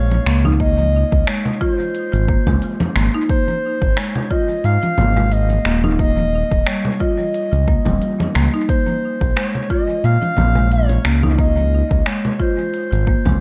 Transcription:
Already playing: A#1 C#5
0.11 open hi-hat, muted conga, shaker
0.26 C#2 A#3, finger snap
0.45 D#4, open hi-hat, low conga, shaker
0.60 A#3 D#5, kick, open hi-hat, shaker
0.78 open hi-hat, high conga, shaker
1.12 C#2, kick, open hi-hat, shaker
1.27 G#3 C#5, finger snap, open hi-hat, shaker
1.45 open hi-hat, low conga, shaker
1.61 F4 C5, kick, muted conga
1.80 open hi-hat, high conga, shaker
1.95 open hi-hat, shaker
2.13 G#1, open hi-hat, muted conga, shaker
2.28 A#3, kick
2.47 C#2 G#3, kick, muted conga, low conga, shaker
2.62 open hi-hat, shaker
2.80 open hi-hat, muted conga, high conga, low conga, shaker
2.96 G#1 A#3, finger snap, muted conga
3.14 D#4, open hi-hat, shaker
3.29 A#3 C5, kick, open hi-hat, shaker
3.48 open hi-hat, high conga, shaker
3.82 G#1, kick, open hi-hat, shaker
3.97 G#3 C#5, finger snap, open hi-hat, shaker
4.15 open hi-hat, low conga, shaker
4.31 F4 D#5, kick
4.49 open hi-hat, high conga, shaker
4.64 G#2 F5, open hi-hat, shaker
4.83 open hi-hat, high conga, shaker
4.98 G#1 A#3, low conga
5.17 G#3, low conga, shaker
5.32 D#5, open hi-hat, shaker
5.50 open hi-hat, muted conga, shaker
5.65 D#1 A#3, finger snap
5.84 D#4, open hi-hat, low conga, shaker
5.99 A#3 D#5, kick, open hi-hat, shaker
6.17 open hi-hat, high conga, shaker
6.51 D#1, kick, open hi-hat, shaker
6.66 G3 C#5, finger snap, open hi-hat, shaker
6.85 open hi-hat, low conga, shaker
7.00 F4 D#5, kick, muted conga
7.19 open hi-hat, high conga, shaker
7.34 open hi-hat, shaker
7.53 C#2, open hi-hat, muted conga, shaker
7.68 A#3, kick
7.85 D#1 G3, kick, muted conga, low conga, shaker
8.02 open hi-hat, shaker
8.20 open hi-hat, muted conga, high conga, low conga, shaker
8.35 C#2 A#3, finger snap, muted conga
8.54 D#4, open hi-hat, shaker
8.69 A#3 C5, kick, open hi-hat, shaker
8.87 open hi-hat, high conga, shaker
9.21 A#1, kick, open hi-hat, shaker
9.36 G#3 C#5, finger snap, open hi-hat, shaker
9.55 open hi-hat, low conga, shaker
9.70 F4 D#5, kick
9.88 open hi-hat, high conga, shaker
10.04 A#2 F5, open hi-hat, shaker
10.22 open hi-hat, high conga, shaker
10.37 A#1 A#3, low conga
10.38 low conga
10.55 G#3, low conga, shaker
10.72 C#5, open hi-hat, shaker
10.89 open hi-hat, muted conga, shaker
11.05 C#2 A#3, finger snap
11.23 D#4, open hi-hat, low conga, shaker
11.38 A#3 D#5, kick, open hi-hat, shaker
11.57 open hi-hat, high conga, shaker
11.91 C#2, kick, open hi-hat, shaker
12.06 G#3 C#5, finger snap, open hi-hat, shaker
12.25 open hi-hat, low conga, shaker
12.39 F4 C5, kick, muted conga
12.58 open hi-hat, high conga, shaker
12.74 open hi-hat, shaker
12.92 G#1, open hi-hat, muted conga, shaker
13.07 A#3, kick
13.26 C#2 G#3, kick, muted conga, low conga, shaker

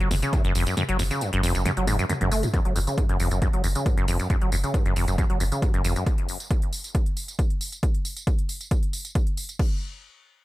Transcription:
0.00 F#1 F#3, closed hi-hat
0.11 F#1 F2, open hi-hat, mid tom, tambourine
0.22 C#3, closed hi-hat, tambourine
0.33 F#2, kick, closed hi-hat, mid tom, tambourine
0.45 F#1 F#2, closed hi-hat
0.55 F#1 F2, open hi-hat, tambourine
0.67 F#2, closed hi-hat, tambourine
0.77 F#2, closed hi-hat, mid tom, tambourine
0.89 F#1 F#3, closed hi-hat
0.99 F#1 F2, open hi-hat, mid tom, tambourine
1.11 C#3, closed hi-hat, tambourine
1.21 F#2, closed hi-hat, tambourine
1.33 F#1 F#2, closed hi-hat
1.43 F#1 F2, open hi-hat, tambourine
1.55 F#1 F#2, closed hi-hat, tambourine
1.65 F#2, closed hi-hat, mid tom, tambourine
1.77 F#1 F#3, closed hi-hat
1.87 F#1 G#2, open hi-hat, mid tom, high tom, tambourine
1.99 F#2, closed hi-hat, tambourine
2.09 F#2, closed hi-hat, mid tom, tambourine
2.21 F#1 F#2, closed hi-hat, mid tom
2.32 F#1 A3, open hi-hat, tambourine
2.43 F#2, closed hi-hat, mid tom, tambourine
2.54 F#2, kick, closed hi-hat, tambourine
2.65 F#1 F#3, closed hi-hat
2.76 F#1 F2, open hi-hat, tambourine
2.87 C#3, closed hi-hat, tambourine
2.98 F#2, kick, closed hi-hat, tambourine
3.09 F#1 F#2, closed hi-hat
3.20 F#1 F2, open hi-hat, tambourine
3.31 F#1 F#2, closed hi-hat, tambourine
3.42 F#2, kick, closed hi-hat, tambourine
3.53 F#1 F#3, closed hi-hat
3.64 F#1 F2, open hi-hat, tambourine
3.75 C#3, closed hi-hat, tambourine
3.86 F#2, kick, closed hi-hat, tambourine
3.97 F#1 F#2, closed hi-hat
4.08 F#1 F2, open hi-hat, tambourine
4.19 F#2, closed hi-hat, tambourine
4.30 F#2, kick, closed hi-hat, tambourine
4.41 F#1 F#3, closed hi-hat
4.52 F#1 F2, open hi-hat, tambourine
4.64 C#3, closed hi-hat, tambourine
4.74 F#2, kick, closed hi-hat, tambourine
4.86 F#1 F#2, closed hi-hat
4.96 F#1 F2, open hi-hat, tambourine
5.08 F#1 F#2, closed hi-hat, tambourine
5.18 F#2, kick, closed hi-hat, tambourine
5.30 F#1 F#3, closed hi-hat
5.40 F#1 F2, open hi-hat, tambourine
5.52 C#3, closed hi-hat, tambourine
5.62 F#2, kick, closed hi-hat, tambourine
5.74 F#1 F#2, closed hi-hat
5.84 F#1 F2, open hi-hat, tambourine
5.96 F#2, closed hi-hat, tambourine
6.06 kick, closed hi-hat, tambourine
6.18 closed hi-hat
6.29 open hi-hat, tambourine
6.40 closed hi-hat, tambourine
6.51 kick, closed hi-hat, tambourine
6.62 closed hi-hat
6.73 open hi-hat, tambourine
6.84 closed hi-hat, tambourine
6.95 kick, closed hi-hat, tambourine
7.06 closed hi-hat
7.17 open hi-hat, tambourine
7.28 closed hi-hat, tambourine
7.39 kick, closed hi-hat, tambourine
7.50 closed hi-hat
7.61 open hi-hat, tambourine
7.72 closed hi-hat, tambourine
7.83 kick, closed hi-hat, tambourine
7.95 closed hi-hat
8.05 open hi-hat, tambourine
8.17 closed hi-hat, tambourine
8.27 kick, closed hi-hat, tambourine
8.39 closed hi-hat
8.49 open hi-hat, tambourine
8.61 closed hi-hat, tambourine
8.71 kick, closed hi-hat, tambourine
8.83 closed hi-hat
8.93 open hi-hat, tambourine
9.05 closed hi-hat, tambourine
9.15 kick, closed hi-hat, tambourine
9.27 closed hi-hat
9.37 open hi-hat, tambourine
9.49 closed hi-hat, tambourine
9.59 kick, crash

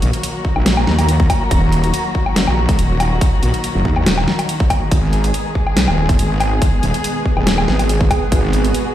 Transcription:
Already playing: D#3 F#3 A#3 F#4 A#5
0.02 A#1, closed hi-hat
0.13 closed hi-hat
0.23 closed hi-hat
0.45 kick
0.56 A#1, low woodblock
0.66 snare, closed hi-hat
0.77 low woodblock
0.87 D#2, snare
0.99 closed hi-hat, low woodblock
1.09 closed hi-hat
1.20 kick
1.30 kick, closed hi-hat, low woodblock
1.51 D#1, kick, closed hi-hat
1.72 closed hi-hat
1.84 closed hi-hat
1.94 closed hi-hat
2.15 kick
2.26 low woodblock
2.36 F#1, snare, closed hi-hat
2.47 A#1, low woodblock
2.69 C#2, kick, closed hi-hat
2.79 D#1, closed hi-hat
3.00 closed hi-hat, low woodblock
3.21 kick, closed hi-hat
3.43 A#1, closed hi-hat
3.54 closed hi-hat
3.64 closed hi-hat
3.75 F#1
3.85 D#2, kick
3.96 low woodblock
4.06 D#1, snare, closed hi-hat
4.18 low woodblock
4.28 snare
4.39 closed hi-hat, low woodblock
4.49 closed hi-hat
4.60 kick
4.70 kick, closed hi-hat, low woodblock
4.91 G#1 G#3 B3 G#4, kick, closed hi-hat
5.10 G#4, closed hi-hat
5.24 closed hi-hat
5.34 closed hi-hat
5.55 kick
5.67 low woodblock
5.77 B1, snare, closed hi-hat
5.88 D#1, low woodblock
6.09 F#1, kick, closed hi-hat
6.19 G#1, closed hi-hat
6.24 G#5
6.40 closed hi-hat, low woodblock
6.62 kick, closed hi-hat
6.83 D#1, closed hi-hat
6.94 closed hi-hat
7.04 closed hi-hat
7.26 kick
7.37 D#1, low woodblock
7.47 snare, closed hi-hat
7.58 low woodblock
7.68 G#1, snare
7.79 closed hi-hat, low woodblock
7.89 closed hi-hat
8.01 kick
8.11 kick, closed hi-hat, low woodblock
8.32 G#1 F#4, kick, closed hi-hat
8.53 closed hi-hat
8.64 closed hi-hat
8.74 closed hi-hat

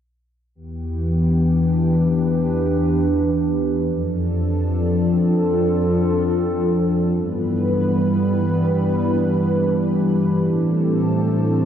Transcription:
0.55 E2 E3 B3 G4
0.91 D4
1.09 B4
1.22 G4
3.84 F2 F3 D4 A4
3.97 C4
4.44 A4
4.58 F4
7.13 G2 E3 G3 B3 B4
7.50 D4
7.74 G4 B4
10.41 A2 A3 C4 A4
11.17 C5

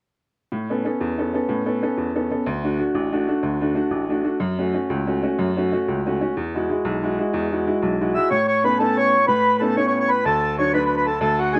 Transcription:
0.52 A2
0.70 B3 C#4 A4
0.85 B3 C#4 A4
1.01 E2
1.18 B3 C#4 A4
1.34 B3 C#4 A4
1.49 A2
1.66 B3 C#4 A4
1.82 B3 C#4 A4
1.97 E2
2.16 B3 C#4 A4
2.31 B3 C#4 A4
2.46 D2
2.63 A3 D4 F#4
2.79 A3 D4 F#4
2.94 A1
3.13 A3 D4 F#4
3.28 A3 D4 F#4
3.43 D2
3.61 A3 D4 F#4
3.74 A3 D4 F#4
3.91 A1
4.09 A3 D4 F#4
4.24 A3 D4 F#4
4.40 F#2
4.59 A3 C#4 F#4
4.73 A3 C#4 F#4
4.90 C#2
5.07 A3 C#4 F#4
5.22 A3 C#4 F#4
5.39 F#2
5.56 A3 C#4 F#4
5.72 A3 C#4 F#4
5.88 C#2
6.06 A3 C#4 F#4
6.21 A3 C#4 F#4
6.37 E2
6.55 G#3 E4 F#4
6.69 G#3 E4 F#4
6.85 B1
7.03 G#3 E4 F#4
7.19 G#3 E4 F#4
7.34 E2
7.52 G#3 E4 F#4
7.67 G#3 E4 F#4
7.82 B1
8.01 G#3 E4 F#4
8.15 G#3 E4 F#4 E5
8.31 A2 C#5
8.48 C#5
8.64 A3 B3 C#4 B4
8.79 A3 B3 C#4 A4
8.97 C#5
9.28 A2 B4
9.58 A3 B3 C#4 A4 B4
9.77 A3 B3 C#4 C#5
9.87 C#5
10.00 C#5
10.09 B4
10.25 D2 A4
10.58 F#3 A3 D4 C#5
10.73 F#3 A3 D4 B4
10.86 B4
10.97 B4
11.06 A4
11.21 D2 A4
11.39 F#4
11.53 F#3 A3 D4 G#4

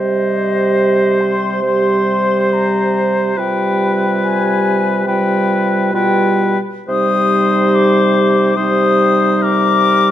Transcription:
Already playing: C3 G3 G4 C5 D#5
1.21 C6
1.62 G3 G4 C5 C6
2.53 A#5
3.36 C3 G3 F4 B4 G5
4.24 G#5
5.06 G3 F4 B4 G5
5.92 B2 G3 F4 B4 G5
6.88 C3 G3 D#4 C5 D#6
7.75 D6
8.56 G3 D#4 C5 D#6
9.42 A#4 D6

